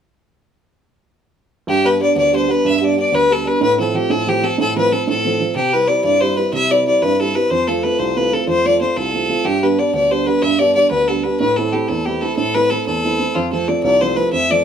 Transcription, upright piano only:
1.67 G2
1.84 G3 B3 D4
2.00 G3 B3 D4
2.16 D2
2.33 G3 B3 D4
2.48 G3 B3 D4
2.65 G2
2.81 G3 B3 D4
2.97 G3 B3 D4
3.12 D2
3.29 G3 B3 D4
3.45 G3 B3 D4
3.61 A2
3.78 F3 A3 C4
3.94 F3 A3 C4
4.10 A2
4.27 F3 A3 C4
4.42 F3 A3 C4
4.58 A2
4.76 F3 A3 C4
4.91 F3 A3 C4
5.07 A2
5.24 F3 A3 C4
5.39 F3 A3 C4
5.55 C3
5.72 G3 C4 E4
5.88 G3 C4 E4
6.04 G2
6.21 G3 C4 E4
6.37 G3 C4 E4
6.53 C3
6.70 G3 C4 E4
6.86 G3 C4 E4
7.02 G2
7.20 G3 C4 E4
7.35 G3 C4 E4
7.51 F2
7.68 A3 C4 F4
7.84 A3 C4 F4
7.99 C2
8.17 A3 C4 F4
8.32 A3 C4 F4
8.47 F2
8.65 A3 C4 F4
8.81 A3 C4 F4
8.97 C2
9.14 A3 C4 F4
9.29 A3 C4 F4
9.45 G2
9.62 G3 B3 D4
9.78 G3 B3 D4
9.93 D2
10.10 G3 B3 D4
10.27 G3 B3 D4
10.42 G2
10.59 G3 B3 D4
10.75 G3 B3 D4
10.91 D2
11.09 G3 B3 D4
11.24 G3 B3 D4
11.40 A2
11.58 A3 C4 E4
11.73 A3 C4 E4
11.89 E2
12.07 A3 C4 E4
12.22 A3 C4 E4
12.37 A2
12.55 A3 C4 E4
12.71 A3 C4 E4
12.87 E2
13.04 A3 C4 E4
13.19 A3 C4 E4
13.36 F2
13.52 F3 A3 C4
13.68 F3 A3 C4
13.84 C2
14.01 F3 A3 C4
14.17 F3 A3 C4
14.33 F2
14.50 F3 A3 C4

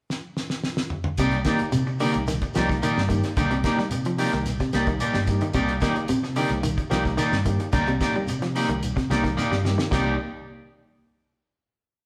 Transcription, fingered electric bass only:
1.18 C2
1.61 muted fingered electric bass stroke
1.75 C3
2.15 C2
2.56 C2
2.97 G2
3.37 C2
3.79 muted fingered electric bass stroke
3.91 C3
4.33 C2
4.74 C2
5.15 G2
5.54 C2
5.97 muted fingered electric bass stroke
6.10 C3
6.50 C2
6.91 C2
7.32 G2
7.74 C2
8.14 muted fingered electric bass stroke
8.27 C3
8.69 C2
9.10 C2
9.51 G2
9.92 C2

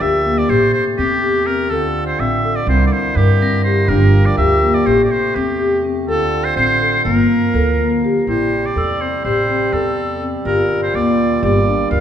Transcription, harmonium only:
Already playing: F3 A#3 G4
0.48 C3 A3
1.71 D3 C4 F4
2.66 A#3 E4
3.87 F3 A#3 G4
4.85 C3 A3
6.07 D3 C4 F4
7.05 F3 A#3 A#4
8.28 C3 G3 G4
10.45 A#2 F4

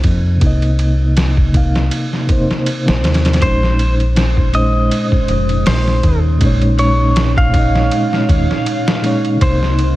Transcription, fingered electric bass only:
0.04 F2
0.42 C2
2.89 A#1
3.05 D#2
3.42 A#1
5.30 F1
5.67 A#1
6.04 D#2
6.41 A#1
8.29 D#2
9.42 C2

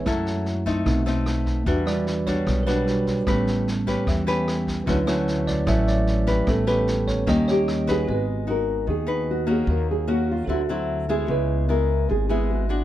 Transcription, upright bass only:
0.06 F#2
0.86 B1
1.66 E2
2.47 B1
3.27 A1
4.07 E2
4.88 D2
5.67 A1
6.47 A1
7.27 D#2
8.09 G#1
8.87 D#2
9.67 D#2
10.47 D2
11.28 C#2
12.10 G#1

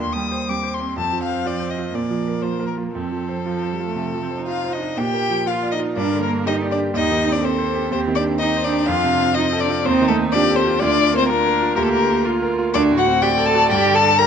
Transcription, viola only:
0.50 C4
0.98 C4
1.93 A#3
2.94 C4
3.46 F3
3.73 G3
3.86 A3
4.22 C4
4.36 D#4
4.74 D4
5.96 A#4
6.47 G4
6.94 G4
7.42 A4
7.92 G4
8.40 D#4
8.88 D4
9.37 C4
9.85 D#4
10.34 G4
10.82 F4
11.30 D4
11.76 G4
12.25 F4
12.75 F#4
13.22 D5
14.19 A#4

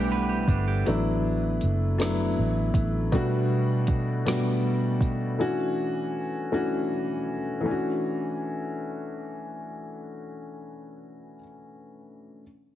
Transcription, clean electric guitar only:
Already playing: A3 D4 G4 B4
0.12 B4
0.29 G4
0.48 D4
0.68 G4

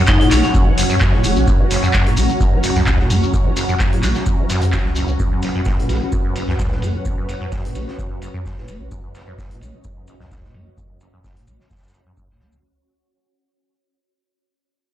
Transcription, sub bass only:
0.31 A#1
0.55 F#1
0.90 F#2
1.24 E1
1.36 A#1
1.48 F#1
2.17 A#1
2.76 C#2
3.10 F#2
3.34 F#1
4.03 A#1
4.27 F#1
4.62 F#2
4.85 C#2
5.08 C#2
5.20 F#1
5.89 A#1
6.48 C#2
6.82 F#2
7.06 F#1
7.75 A#1
7.99 F#1
8.34 F#2
8.68 E1
8.80 A#1
8.92 F#1
9.61 A#1
10.20 C#2
10.54 F#2
10.78 F#1
11.47 A#1
11.71 F#1
12.06 F#2
12.29 C#2
12.53 C#2

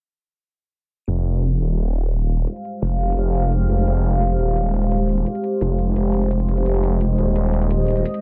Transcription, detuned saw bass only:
1.08 F1
1.60 D#1
2.82 F1
3.17 F1
3.69 F1
3.87 F1
4.39 D#1
5.61 F1
5.96 F1
6.48 F1
6.66 F1
7.18 D#1

